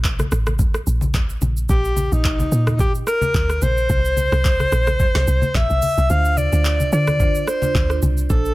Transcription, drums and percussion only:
0.04 kick, clap, shaker
0.19 cross-stick, high conga, shaker
0.32 cross-stick, shaker
0.47 cross-stick, high conga, shaker
0.59 kick, low conga, shaker
0.74 cross-stick, shaker
0.87 shaker
1.01 high conga, shaker
1.14 kick, snare, clap, low conga, shaker
1.30 shaker
1.42 high conga, shaker
1.57 shaker
1.69 kick, shaker
1.85 shaker
1.96 high conga, shaker
2.12 shaker
2.25 kick, clap, shaker
2.39 high conga, shaker
2.52 shaker
2.67 cross-stick, high conga, shaker
2.79 kick, low conga, shaker
2.95 shaker
3.07 cross-stick, shaker
3.21 high conga, shaker
3.34 kick, clap, low conga, shaker
3.50 cross-stick, shaker
3.62 high conga, shaker
3.77 shaker
3.90 kick, shaker
4.05 shaker
4.17 high conga, shaker
4.32 cross-stick, shaker
4.44 kick, clap, low conga, shaker
4.60 cross-stick, high conga, shaker
4.72 cross-stick, shaker
4.87 cross-stick, high conga, shaker
5.00 kick, low conga, shaker
5.15 cross-stick, snare, shaker
5.28 shaker
5.42 high conga, shaker
5.55 kick, snare, clap, low conga, shaker
5.70 shaker
5.82 open hi-hat, high conga, shaker
5.97 shaker
6.10 shaker
6.25 shaker
6.37 high conga, shaker
6.53 shaker
6.65 clap, shaker
6.80 high conga, shaker
6.93 shaker
7.07 cross-stick, high conga, shaker
7.20 kick, low conga, shaker
7.35 shaker
7.47 cross-stick, shaker
7.62 high conga, shaker
7.75 kick, clap, low conga, shaker
7.90 cross-stick, shaker
8.02 high conga, shaker
8.18 shaker
8.30 kick, shaker
8.45 shaker

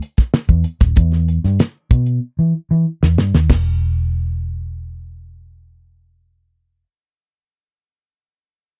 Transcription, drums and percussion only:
0.02 closed hi-hat
0.17 kick, snare, closed hi-hat
0.34 snare, closed hi-hat
0.49 kick
0.64 closed hi-hat
0.80 kick, snare, closed hi-hat
0.96 kick, closed hi-hat
1.12 snare, closed hi-hat
1.28 closed hi-hat
1.44 snare, closed hi-hat
1.59 snare, closed hi-hat
1.91 kick, closed hi-hat
2.06 closed hi-hat
3.03 snare
3.18 snare
3.35 snare
3.50 kick, snare, splash

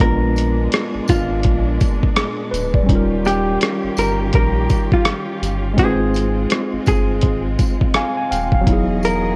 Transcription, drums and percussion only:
0.00 kick, closed hi-hat
0.36 closed hi-hat, tambourine
0.72 cross-stick, closed hi-hat
1.08 kick, closed hi-hat, tambourine
1.43 kick, closed hi-hat
1.80 kick, closed hi-hat, tambourine
2.03 kick
2.16 cross-stick, closed hi-hat
2.54 closed hi-hat, tambourine
2.74 kick
2.89 kick, closed hi-hat
3.25 closed hi-hat, tambourine
3.61 cross-stick, closed hi-hat
3.97 closed hi-hat, tambourine
4.33 kick, closed hi-hat
4.70 kick, closed hi-hat, tambourine
4.92 kick
5.05 cross-stick, closed hi-hat
5.43 closed hi-hat, tambourine
5.78 kick, closed hi-hat
6.14 closed hi-hat, tambourine
6.50 cross-stick, closed hi-hat
6.86 kick, closed hi-hat, tambourine
7.21 kick, closed hi-hat
7.59 kick, closed hi-hat, tambourine
7.81 kick
7.94 cross-stick, closed hi-hat
8.32 closed hi-hat, tambourine
8.52 kick
8.67 kick, closed hi-hat
9.03 closed hi-hat, tambourine

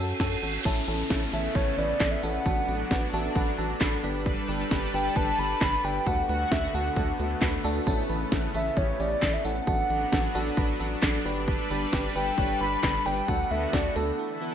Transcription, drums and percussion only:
0.09 closed hi-hat
0.20 kick, snare, closed hi-hat
0.42 closed hi-hat
0.54 closed hi-hat
0.65 kick, closed hi-hat, crash
0.88 closed hi-hat
0.99 closed hi-hat
1.10 kick, snare, closed hi-hat
1.33 closed hi-hat
1.45 closed hi-hat
1.55 kick, closed hi-hat
1.78 closed hi-hat
1.89 closed hi-hat
2.00 kick, snare, clap, closed hi-hat
2.23 open hi-hat
2.34 closed hi-hat
2.46 kick, closed hi-hat
2.68 closed hi-hat
2.80 closed hi-hat
2.91 kick, snare, closed hi-hat
3.13 closed hi-hat
3.25 closed hi-hat
3.36 kick, closed hi-hat
3.59 closed hi-hat
3.70 closed hi-hat
3.81 kick, snare, clap, closed hi-hat
4.03 open hi-hat
4.15 closed hi-hat
4.26 kick, closed hi-hat
4.49 closed hi-hat
4.60 closed hi-hat
4.71 kick, snare, closed hi-hat
4.94 closed hi-hat
5.05 closed hi-hat
5.16 kick, closed hi-hat
5.39 closed hi-hat
5.50 closed hi-hat
5.61 kick, snare, clap, closed hi-hat
5.84 open hi-hat
5.95 closed hi-hat
6.06 kick, closed hi-hat
6.29 closed hi-hat
6.40 closed hi-hat
6.52 kick, snare, closed hi-hat
6.74 closed hi-hat
6.86 closed hi-hat
6.96 kick, closed hi-hat
7.20 closed hi-hat
7.31 closed hi-hat
7.41 kick, snare, clap, closed hi-hat
7.64 open hi-hat
7.75 closed hi-hat
7.87 kick, closed hi-hat
8.09 closed hi-hat
8.21 closed hi-hat
8.32 kick, snare, closed hi-hat
8.54 closed hi-hat
8.66 closed hi-hat
8.77 kick, closed hi-hat
9.00 closed hi-hat
9.11 closed hi-hat
9.22 kick, snare, clap, closed hi-hat
9.45 open hi-hat
9.56 closed hi-hat
9.67 kick, closed hi-hat
9.90 closed hi-hat
10.01 closed hi-hat
10.12 kick, snare, closed hi-hat
10.35 closed hi-hat
10.47 closed hi-hat
10.57 kick, closed hi-hat
10.80 closed hi-hat
10.91 closed hi-hat
11.02 kick, snare, clap, closed hi-hat
11.25 open hi-hat
11.36 closed hi-hat
11.48 kick, closed hi-hat
11.70 closed hi-hat
11.82 closed hi-hat
11.93 kick, snare, closed hi-hat
12.15 closed hi-hat
12.27 closed hi-hat
12.38 kick, closed hi-hat
12.61 closed hi-hat
12.72 closed hi-hat
12.83 kick, snare, clap, closed hi-hat
13.06 open hi-hat
13.17 closed hi-hat
13.28 kick, closed hi-hat
13.51 closed hi-hat
13.62 closed hi-hat
13.73 kick, snare, closed hi-hat
13.96 closed hi-hat
14.07 closed hi-hat

